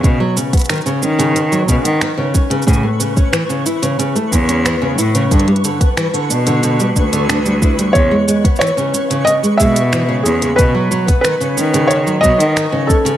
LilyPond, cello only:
\new Staff \with { instrumentName = "Cello" } { \clef bass \time 4/4 \key b \mixolydian \tempo 4 = 91 b,16 r4 r16 dis4 b,16 dis16 r4 | a,16 r2 r16 e,4 a,16 r16 | g,16 r4 r16 b,4 d,4. | e,16 r2 r16 b,4 e,16 r16 |
b,16 r4 r16 dis4 b,16 dis16 r4 | }